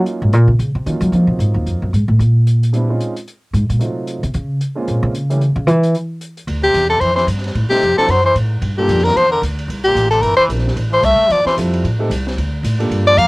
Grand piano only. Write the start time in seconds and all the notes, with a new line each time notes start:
Already playing: F#3 A#3 C#4 D#4 F4
0.86 F#3 A#3 C#4 D#4 F4
1.13 F#3 A#3 C4 D#4 F4
2.73 G3 B3 C4 D4 E4
2.89 G#3 C4 C#4 D#4 F4
3.79 F#3 A3 C4 D#4 F4
4.75 G#3 A#3 C4 C#4 F4
5.30 E3 G3 A3 C#4 G4
7.70 G3 A3 C4 D#4 G4
7.97 F#3 C4 D4 E4 C5
8.78 G3 A#3 D4 F4 A4
10.49 G3 C4 D4 E4 A#4
11.57 G3 C4 E4 F4 A4
11.99 A3 C4 D#4 G4 A4
12.79 A#3 D4 F4 G4 A4